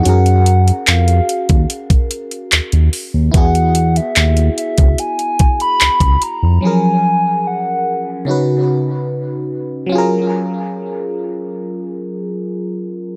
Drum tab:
HH |xxxxxxxxxxxxxxo-|xxxxxxxxxxxxxxx-|----------------|----------------|
CP |----x-------x---|----x-------x---|----------------|----------------|
BD |-------o-o------|o------o--o--o--|----------------|----------------|